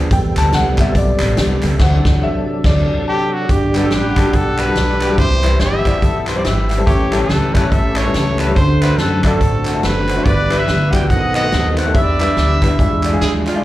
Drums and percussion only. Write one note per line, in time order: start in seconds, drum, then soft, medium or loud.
0.11 kick loud
0.11 closed hi-hat loud
0.36 snare soft
0.36 clap medium
0.36 closed hi-hat medium
0.52 snare medium
0.52 closed hi-hat medium
0.78 kick loud
0.78 clap medium
0.78 closed hi-hat medium
0.95 kick medium
0.95 closed hi-hat medium
1.19 snare soft
1.19 clap medium
1.19 closed hi-hat medium
1.37 snare loud
1.37 closed hi-hat medium
1.62 clap medium
1.62 closed hi-hat medium
1.79 kick loud
1.79 snare loud
1.79 crash medium
2.05 kick loud
2.05 snare loud
2.64 kick loud
2.64 snare medium
2.64 crash medium
3.49 kick loud
3.49 closed hi-hat medium
3.74 snare soft
3.74 clap medium
3.74 closed hi-hat medium
3.90 snare medium
3.90 closed hi-hat medium
4.16 kick medium
4.16 clap medium
4.16 closed hi-hat medium
4.33 kick medium
4.33 closed hi-hat medium
4.58 clap medium
4.58 closed hi-hat medium
4.75 snare loud
4.75 closed hi-hat medium
5.01 clap medium
5.01 closed hi-hat medium
5.18 kick loud
5.18 closed hi-hat medium
5.43 snare soft
5.43 clap medium
5.43 closed hi-hat medium
5.59 snare loud
5.59 closed hi-hat medium
5.85 kick medium
5.85 clap medium
5.85 closed hi-hat medium
6.02 kick medium
6.02 closed hi-hat medium
6.27 snare soft
6.27 clap medium
6.27 closed hi-hat medium
6.44 snare loud
6.44 closed hi-hat medium
6.70 clap medium
6.70 closed hi-hat medium
6.87 kick loud
6.87 closed hi-hat medium
7.13 clap medium
7.13 closed hi-hat medium
7.29 snare medium
7.29 closed hi-hat medium
7.55 kick medium
7.55 clap medium
7.55 closed hi-hat medium
7.72 kick loud
7.72 closed hi-hat medium
7.96 snare soft
7.96 clap loud
7.96 closed hi-hat medium
8.14 snare loud
8.14 closed hi-hat medium
8.39 clap medium
8.39 closed hi-hat medium
8.56 kick loud
8.56 closed hi-hat medium
8.82 snare soft
8.82 clap medium
8.82 closed hi-hat medium
8.98 snare medium
8.98 closed hi-hat medium
9.24 kick medium
9.24 clap medium
9.24 closed hi-hat medium
9.41 kick medium
9.41 closed hi-hat medium
9.65 snare soft
9.65 clap medium
9.65 closed hi-hat medium
9.83 snare loud
9.83 closed hi-hat medium
10.08 clap medium
10.08 closed hi-hat medium
10.26 kick loud
10.26 closed hi-hat medium
10.51 snare soft
10.51 clap medium
10.51 closed hi-hat medium
10.68 snare medium
10.68 closed hi-hat medium
10.93 kick medium
10.93 clap loud
10.93 closed hi-hat medium
11.10 kick medium
11.10 closed hi-hat medium
11.35 clap medium
11.35 closed hi-hat medium
11.52 snare loud
11.52 closed hi-hat medium
11.77 clap medium
11.77 closed hi-hat medium
11.95 kick loud
11.95 closed hi-hat medium
12.20 snare soft
12.20 clap medium
12.20 closed hi-hat medium
12.37 snare medium
12.37 closed hi-hat medium
12.62 kick medium
12.62 clap medium
12.62 closed hi-hat medium
12.79 kick medium
12.79 closed hi-hat medium
13.03 clap medium
13.03 closed hi-hat medium
13.21 snare loud
13.21 closed hi-hat medium
13.47 clap medium
13.47 closed hi-hat medium